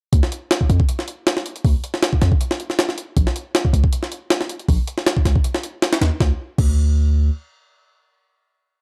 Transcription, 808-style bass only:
0.13 D2
0.70 F2
1.65 D2
2.22 F2
3.17 A#1
3.73 C#2
4.69 A#1
5.25 C#2
6.01 D#2
6.20 D2
6.58 D2

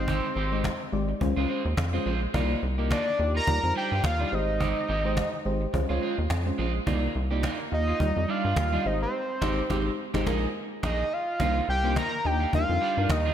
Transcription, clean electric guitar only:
0.08 C4 D#4 G4
0.36 C4 D#4 G4
0.52 C4 D#4 G4
0.64 muted clean electric guitar stroke
0.80 muted clean electric guitar stroke
1.09 muted clean electric guitar stroke
1.21 muted clean electric guitar stroke
1.36 G#3 C4 F4
1.49 G#3 C4 F4
1.65 muted clean electric guitar stroke
1.77 muted clean electric guitar stroke
1.93 G#3 C4 F4
2.05 G#3 C4 F4
2.22 muted clean electric guitar stroke
2.34 A#3 D#4 F4
2.62 muted clean electric guitar stroke
2.78 A#3 D#4 G4
2.90 A#3 D#4 F4
3.06 muted clean electric guitar stroke
3.19 muted clean electric guitar stroke
3.35 A#3 D#4 F4
3.47 muted clean electric guitar stroke
3.63 muted clean electric guitar stroke
3.75 G3 D4 G4
3.91 G3 D4 F4
4.04 muted clean electric guitar stroke
4.19 G3 D4 F4
4.32 muted clean electric guitar stroke
4.48 muted clean electric guitar stroke
4.60 C4 D#4 G4
4.88 C4 D#4 G4
5.04 C4 D#4 G4
5.17 muted clean electric guitar stroke
5.33 muted clean electric guitar stroke
5.61 muted clean electric guitar stroke
5.73 muted clean electric guitar stroke
5.89 G#3 C4 F4
6.02 G#3 C4 F4
6.17 muted clean electric guitar stroke
6.46 muted clean electric guitar stroke
6.58 G#3 C4 F4
6.74 muted clean electric guitar stroke
6.86 A#3 D#4 F4
7.15 muted clean electric guitar stroke
7.31 A#3 D#4 G4
7.43 A#3 D#4 F4
7.59 muted clean electric guitar stroke
7.72 muted clean electric guitar stroke
7.87 A#3 D#4 F4
8.00 muted clean electric guitar stroke
8.16 muted clean electric guitar stroke
8.28 G3 D4 G4
8.44 G3 D4 F4
8.57 muted clean electric guitar stroke
8.73 G3 D4 F4
8.85 muted clean electric guitar stroke
9.01 muted clean electric guitar stroke
9.41 C4 D#4 G4
9.70 C4 D#4 G4
10.14 C4 D#4 G4
10.26 A#3 D#4 G#4
10.83 A#3 D#4 G#4
11.40 A#3 D#4 F4
11.68 muted clean electric guitar stroke
11.84 A#3 D#4 G4
11.96 A#3 D#4 F4
12.12 muted clean electric guitar stroke
12.24 muted clean electric guitar stroke
12.40 A#3 D#4 F4
12.53 muted clean electric guitar stroke
12.69 muted clean electric guitar stroke
12.81 G3 D4 G4
12.97 G3 D4 F4
13.10 muted clean electric guitar stroke
13.25 G3 D4 F4

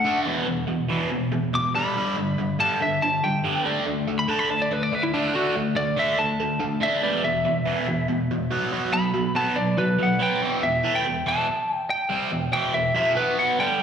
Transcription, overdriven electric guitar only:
0.04 D3 A3 D4
0.26 E2 B2 E3
0.47 E2 B2
0.68 E2 B2
0.89 E2 B2 E3
1.10 E2 B2
1.32 E2 B2
1.54 E2 B2
1.75 G2 D3 G3
1.96 G2 D3 G3
2.17 G2 D3
2.38 G2 D3
2.59 G2 D3 G3
2.81 G2 D3
3.03 G2 D3
3.24 G2 D3
3.44 G2 D3 G3
3.65 D3 A3 D4
3.86 D3 A3
4.08 D3 A3
4.28 D3 A3 D4
4.50 D3 A3
4.71 D3 A3
4.92 D3 A3
5.14 D3 A3 D4
5.34 D3 A3 D4
5.56 D3 A3
5.76 D3 A3
5.97 D3 A3 D4
6.18 D3 A3
6.40 D3 A3
6.60 D3 A3
6.81 D3 A3 D4
7.03 E2 B2 E3
7.24 E2 B2
7.45 E2 B2
7.65 E2 B2 E3
7.88 E2 B2
8.08 E2 B2
8.31 E2 B2
8.51 B2 F#3 B3
8.72 B2 F#3 B3
8.92 B2 F#3
9.14 B2 F#3
9.35 B2 F#3 B3
9.56 B2 F#3
9.78 B2 F#3
9.99 B2 F#3
10.19 B2 F#3 B3
10.40 E2 B2 E3
10.62 E2 B2
10.83 A2 E3 A3
11.05 E2 B2
11.26 E2 B2 E3
12.10 C3 G3 C4
12.31 E2 B2
12.52 E2 B2 E3
12.73 E2 B2
12.94 F2 C3 F3
13.15 B2 F#3 B3
13.59 G2 D3 G3

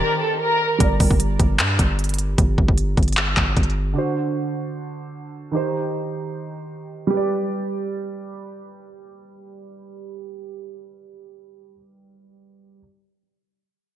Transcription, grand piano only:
Already playing: D#3 D#4 G4 C5
0.78 G3 G4 A#4
0.83 D5
3.93 D3 D4 F#4
3.98 C5
5.51 D#3 D#4 G4
5.56 C5
7.07 G3 G4
7.14 B4 D5

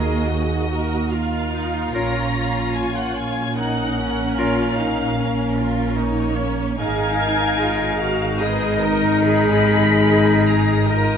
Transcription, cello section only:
Already playing: G#4
0.29 F#4
1.11 F4
3.58 D#4
3.98 C#4
4.38 F4
4.78 D#4
5.18 C#4
5.58 F4
5.99 D#4
6.39 C#4
6.79 D#4
7.59 F4
8.00 F#4
8.40 G#4
8.81 A#4
9.24 G#4
10.07 G#4
10.89 A#4

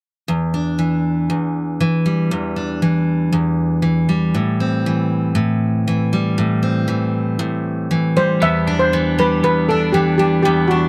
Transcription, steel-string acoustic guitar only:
0.28 E2
0.54 D4
0.79 E3
1.30 E2
1.80 E3
2.06 G3
2.31 E2
2.56 D4
2.82 E3
3.32 E2
3.82 E3
4.09 G3
4.35 A2
4.60 C4
4.86 E3
5.35 A2
5.88 E3
6.13 G3
6.38 A2
6.63 C4
6.88 E3
7.39 A2
7.91 E3
8.17 G3
8.42 E2
8.67 D4
8.93 E3
9.19 G3
9.44 E2
9.70 D4
9.94 E3
10.19 G3
10.45 E2
10.71 D4

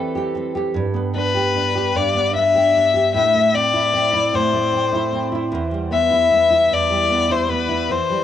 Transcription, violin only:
1.16 B4
1.96 D5
2.36 E5
3.15 E5
3.55 D5
4.35 C5
5.93 E5
6.73 D5
7.32 C5
7.51 B4
7.91 C5

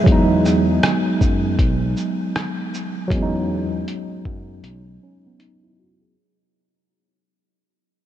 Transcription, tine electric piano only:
0.04 F#3 G#3
0.09 B3 D#4
3.08 F#3 G#3
3.13 B3 C#4
3.22 D#4
5.03 C#4
5.27 B3
5.39 D#4
5.64 E4
5.80 F#4
6.02 G#4

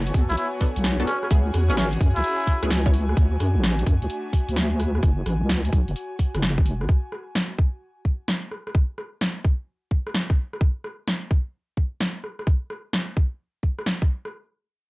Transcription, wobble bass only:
Already playing: F#1
0.14 E2
0.30 B1
0.77 B1
1.31 C#2
1.54 E2
1.70 G#1
2.00 F#2
2.16 C#2
2.63 C#2
3.17 D2
3.40 F#2
3.55 A1
3.86 F#2
4.02 D2
4.49 D2
5.03 F#1
5.26 A1
5.42 C#2
5.73 B1
5.88 F#1
6.34 F#1
6.58 A1
6.66 E1
6.81 A1

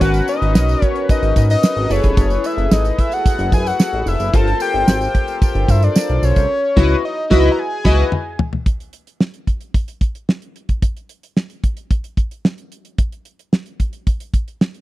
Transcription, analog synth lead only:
0.02 F#5
0.29 D#5
0.85 C#5
1.11 D#5
1.38 D#5
1.51 D#5
1.92 C#5
2.46 E5
2.73 D#5
3.00 E5
3.13 F#5
3.54 G#5
3.67 F#5
4.08 E5
4.35 A5
4.62 G5
5.43 G5
5.70 E5
5.84 D5
6.24 C#5
7.05 D#5
7.32 D#5
7.52 A#5
7.59 G#5

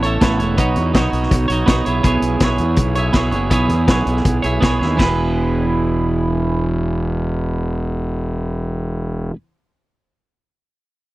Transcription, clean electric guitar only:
Already playing: B3
0.03 E4 A4 C#5
0.21 A3 B3 E4 A4 C#5
0.39 E4 A4 C#5
0.57 B3 D#4 F#4 C#5
0.94 B3 D#4 F#4 C#5
1.48 D#4 F#4 C#5
1.66 B3 D#4 F#4 C#5
1.85 B3 E4 G#4 C#5
2.03 B3 E4 G#4 C#5
2.41 B3 E4 G#4 C#5
2.96 E4 G#4 C#5
3.13 B3 E4 G#4 C#5
3.31 E4 G#4 C#5
3.50 B3 E4 G#4 C#5
3.88 B3 E4 G#4 C#5
4.42 E4 G#4 C#5
4.60 B3 E4 G#4 C#5
4.79 E4 G#4 C#5
4.97 E3 B3 E4 G#4 B4

